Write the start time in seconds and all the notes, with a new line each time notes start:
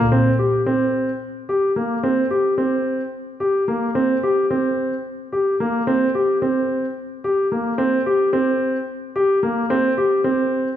0.12 C4
0.39 G4
0.66 C4
1.49 G4
1.76 A#3
2.03 C4
2.31 G4
2.58 C4
3.40 G4
3.68 A#3
3.95 C4
4.23 G4
4.51 C4
5.32 G4
5.60 A#3
5.87 C4
6.15 G4
6.42 C4
7.24 G4
7.52 A#3
7.78 C4
8.06 G4
8.33 C4
9.16 G4
9.43 A#3
9.70 C4
9.98 G4
10.24 C4